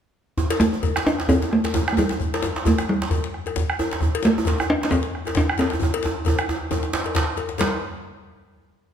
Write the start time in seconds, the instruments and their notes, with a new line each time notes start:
0.37 bombo low, djembe slap, djembe tone, djembe bass
0.50 cowbell, djembe slap
0.60 talking drum A3, djembe slap, djembe tone, djembe bass
0.73 djembe tone
0.83 bombo low, cowbell, djembe bass
0.96 bombo rim, djembe slap, djembe tone
1.06 talking drum D4, bombo rim, djembe tone
1.19 bombo rim, djembe slap
1.28 talking drum C4, bombo low, cowbell, djembe tone, djembe bass
1.42 djembe slap, djembe tone
1.51 talking drum A3, bombo rim, djembe slap
1.64 bombo rim, cowbell, djembe slap, djembe tone
1.74 bombo low, djembe slap, djembe tone, djembe bass
1.87 bombo rim, djembe slap
1.93 talking drum A3
1.97 talking drum G3, cowbell, djembe tone, djembe bass
2.09 bombo rim, djembe slap, djembe tone
2.20 bombo low, djembe slap, djembe bass
2.34 cowbell, djembe slap
2.43 djembe slap, djembe tone
2.56 djembe slap
2.65 talking drum A3, bombo low, cowbell, djembe bass
2.78 bombo rim, djembe slap, djembe tone
2.89 talking drum G3, bombo rim, djembe slap
3.02 bombo rim, djembe slap
3.11 bombo low, cowbell, djembe tone, djembe bass
3.24 djembe slap
3.34 bombo rim, djembe slap
3.46 bombo rim, cowbell, djembe tone
3.56 bombo low, djembe slap, djembe bass
3.69 bombo rim, djembe slap
3.79 bombo rim, cowbell, djembe tone
3.91 bombo rim, djembe slap
4.01 bombo low, djembe slap, djembe tone, djembe bass
4.15 cowbell
4.23 talking drum A3, djembe slap, djembe tone
4.25 djembe slap
4.38 djembe tone
4.45 bombo low, cowbell, djembe slap, djembe bass
4.58 bombo rim, djembe tone
4.60 djembe tone
4.69 talking drum D4, bombo rim, djembe slap
4.82 talking drum D4, bombo rim, djembe slap
4.91 talking drum C4, bombo low, cowbell, djembe tone, djembe bass
5.03 djembe slap
5.14 bombo rim, djembe slap
5.25 bombo rim, cowbell, djembe slap, djembe tone
5.35 talking drum D4, bombo low, djembe slap, djembe tone, djembe bass
5.48 bombo rim, djembe slap
5.58 talking drum C4, bombo rim, cowbell, djembe slap, djembe tone
5.70 bombo rim, djembe slap, djembe tone
5.79 bombo low, djembe tone, djembe bass
5.94 cowbell
6.03 bombo rim, djembe slap, djembe tone
6.06 djembe tone
6.25 bombo low, cowbell, djembe slap, djembe tone, djembe bass
6.39 bombo rim, djembe slap, djembe tone
6.49 djembe tone
6.71 bombo low, cowbell, djembe slap, djembe tone, djembe bass
6.83 bombo rim, djembe slap
6.92 bombo rim, djembe slap
7.04 cowbell, djembe slap, djembe tone
7.15 bombo rim, bombo low, djembe slap, djembe bass
7.27 djembe slap
7.37 cowbell, djembe tone
7.49 djembe slap
7.58 talking drum G3, bombo low, cowbell, djembe slap, djembe bass